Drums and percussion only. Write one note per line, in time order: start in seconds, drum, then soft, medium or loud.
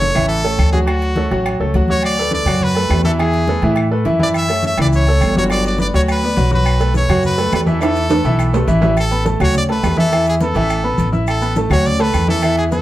0.01 high conga medium
0.15 low conga medium
0.15 low agogo loud
0.15 claves medium
0.30 high conga soft
0.44 high conga soft
0.44 low agogo medium
0.59 high conga medium
0.59 low agogo loud
0.59 claves medium
0.73 high conga loud
0.87 high conga soft
0.87 low agogo loud
0.87 claves medium
1.02 high conga soft
1.02 low agogo medium
1.16 high conga loud
1.31 low agogo medium
1.45 high conga soft
1.45 low agogo loud
1.45 claves medium
1.59 high conga soft
1.74 high conga medium
1.74 low agogo medium
1.88 high conga medium
2.03 low agogo loud
2.03 claves medium
2.17 high conga soft
2.17 low agogo medium
2.31 high conga medium
2.46 low conga medium
2.46 low agogo loud
2.46 claves medium
2.61 high conga soft
2.61 low conga medium
2.75 high conga soft
2.75 low agogo medium
2.89 high conga medium
2.89 low timbale medium
2.89 low agogo loud
2.89 claves medium
3.04 high conga loud
3.19 low agogo loud
3.19 claves medium
3.33 low agogo medium
3.48 high conga loud
3.62 low agogo medium
3.76 high conga soft
3.76 low agogo loud
3.76 claves medium
3.91 high conga soft
4.05 high conga medium
4.05 low agogo medium
4.19 high conga loud
4.34 high conga soft
4.34 low agogo loud
4.34 claves medium
4.34 maracas medium
4.49 high conga soft
4.49 low agogo medium
4.49 maracas medium
4.63 high conga medium
4.63 maracas medium
4.78 low conga medium
4.78 low agogo loud
4.78 claves medium
4.78 maracas soft
4.92 high conga soft
4.92 maracas medium
5.07 high conga soft
5.07 low agogo medium
5.21 high conga medium
5.21 low agogo loud
5.21 claves medium
5.21 maracas medium
5.35 high conga loud
5.35 maracas soft
5.50 high conga soft
5.50 low agogo loud
5.50 claves medium
5.50 maracas medium
5.64 high conga soft
5.64 low agogo medium
5.64 maracas medium
5.78 high conga loud
5.78 maracas medium
5.93 high conga soft
5.93 low agogo medium
5.93 maracas soft
6.07 high conga soft
6.07 low agogo loud
6.07 claves medium
6.07 maracas medium
6.22 high conga soft
6.36 high conga medium
6.36 low agogo medium
6.36 maracas medium
6.51 high conga medium
6.51 maracas soft
6.66 high conga soft
6.66 low agogo loud
6.66 claves medium
6.66 maracas medium
6.80 high conga soft
6.80 low agogo medium
6.80 maracas medium
6.94 high conga loud
6.94 maracas medium
7.09 low conga medium
7.09 low agogo loud
7.09 claves medium
7.09 maracas soft
7.23 high conga soft
7.23 low conga medium
7.23 maracas medium
7.38 low agogo medium
7.38 maracas medium
7.52 high conga medium
7.52 low timbale medium
7.52 low agogo loud
7.52 claves medium
7.52 maracas medium
7.66 high conga medium
7.66 maracas soft
7.81 high timbale loud
7.81 low agogo loud
7.81 claves medium
7.81 maracas medium
7.95 high conga soft
7.95 low agogo medium
7.95 maracas medium
8.10 high conga loud
8.10 high timbale medium
8.10 maracas medium
8.25 low agogo medium
8.25 maracas soft
8.39 high conga soft
8.39 low agogo loud
8.39 claves medium
8.39 maracas medium
8.54 low timbale medium
8.54 maracas medium
8.68 high conga medium
8.68 low agogo medium
8.68 maracas medium
8.82 high conga medium
8.82 low timbale medium
8.82 maracas soft
8.97 high conga soft
8.97 low agogo loud
8.97 claves medium
8.97 maracas medium
9.11 high conga soft
9.11 low agogo medium
9.11 maracas medium
9.26 high conga loud
9.26 maracas medium
9.40 low conga medium
9.40 low agogo loud
9.40 claves medium
9.40 maracas soft
9.55 high conga soft
9.55 low conga medium
9.55 maracas medium
9.69 high conga soft
9.69 low agogo medium
9.83 high conga medium
9.83 low timbale medium
9.83 low agogo loud
9.83 claves medium
9.83 maracas medium
9.98 high conga loud
9.98 maracas soft
10.12 low agogo loud
10.12 claves medium
10.12 maracas medium
10.26 high conga soft
10.26 low agogo medium
10.26 maracas medium
10.40 high conga loud
10.40 maracas medium
10.55 high conga soft
10.55 low agogo medium
10.55 maracas soft
10.69 high conga soft
10.69 low agogo loud
10.69 claves medium
10.69 maracas medium
10.84 high conga soft
10.98 high conga medium
10.98 low agogo medium
10.98 maracas medium
11.13 high conga medium
11.13 maracas soft
11.27 low agogo loud
11.27 claves medium
11.27 maracas medium
11.41 high conga soft
11.41 low agogo medium
11.41 maracas medium
11.56 high conga loud
11.56 maracas medium
11.71 low conga loud
11.71 low agogo loud
11.71 claves medium
11.71 maracas soft
11.85 high conga soft
11.85 low conga medium
11.85 maracas medium
11.99 high conga soft
11.99 low agogo medium
11.99 maracas medium
12.14 high conga medium
12.14 low agogo loud
12.14 claves medium
12.14 maracas medium
12.28 high conga medium
12.28 maracas soft
12.42 high conga soft
12.42 low agogo loud
12.42 claves medium
12.42 maracas medium
12.57 high conga soft
12.57 low agogo medium
12.72 high conga loud
12.72 maracas medium